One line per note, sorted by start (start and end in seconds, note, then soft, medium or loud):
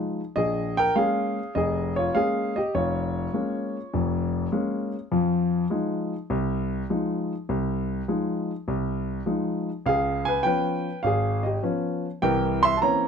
0.00 0.19 F3 soft
0.00 0.20 G#3 soft
0.00 0.20 D#4 medium
0.36 0.88 A#1 medium
0.36 0.75 G#4 medium
0.36 0.78 D#5 medium
0.77 0.96 A#4 medium
0.77 0.95 G5 loud
0.96 1.38 G#3 medium
0.96 1.38 A#3 soft
0.96 1.38 C#4 medium
0.96 1.53 G#4 medium
0.96 1.57 F5 medium
1.55 2.07 F1 medium
1.55 1.94 G#4 medium
1.55 1.93 D#5 medium
1.96 2.15 F4 medium
1.96 2.15 C#5 medium
2.15 2.57 G#3 medium
2.15 2.57 A#3 soft
2.15 2.57 C#4 medium
2.15 2.53 G#4 medium
2.15 2.56 F5 medium
2.56 2.74 G4 medium
2.56 2.73 D#5 medium
2.75 3.26 F1 medium
2.75 4.90 F4 medium
2.75 4.88 C#5 medium
3.34 3.76 G#3 soft
3.34 3.76 A#3 soft
3.34 3.76 C#4 medium
3.94 4.45 F1 medium
3.94 4.45 F2 medium
4.52 4.94 G#3 medium
4.52 4.94 A#3 soft
4.52 4.94 C#4 medium
5.11 5.63 F2 medium
5.11 5.63 F3 medium
5.70 6.12 F3 medium
5.70 6.13 G#3 soft
5.70 6.13 D#4 medium
6.30 6.81 C2 medium
6.90 7.31 F3 medium
6.90 7.32 G#3 soft
6.90 7.32 D#4 medium
7.49 8.00 C2 medium
8.08 8.50 F3 medium
8.08 8.50 G#3 soft
8.08 8.50 D#4 medium
8.68 9.19 C2 medium
9.26 9.68 F3 soft
9.26 9.68 G#3 soft
9.26 9.69 D#4 medium
9.86 10.37 C#2 medium
9.86 10.24 G#4 medium
9.86 10.27 F5 medium
10.25 10.44 B4 medium
10.25 10.43 G#5 medium
10.43 10.86 F3 medium
10.43 10.87 B3 soft
10.43 10.87 C#4 medium
10.43 11.00 B4 medium
10.43 10.99 G5 medium
11.03 11.55 G#1 medium
11.03 11.44 F5 medium
11.07 11.43 G#4 medium
11.43 11.62 G4 medium
11.43 11.61 D#5 medium
11.63 12.05 F3 medium
11.63 12.05 B3 soft
11.63 12.05 C#4 medium
12.22 12.74 C2 medium
12.22 12.74 E3 medium
12.22 12.60 A#4 medium
12.22 12.63 G5 medium
12.63 12.77 E5 medium
12.63 12.77 C6 loud
12.77 12.81 A5 medium
12.81 13.08 E3 medium
12.81 13.08 A#3 soft
12.81 13.08 C4 soft
12.81 13.08 C#4 medium
12.81 13.08 C#5 medium
12.81 13.08 A#5 medium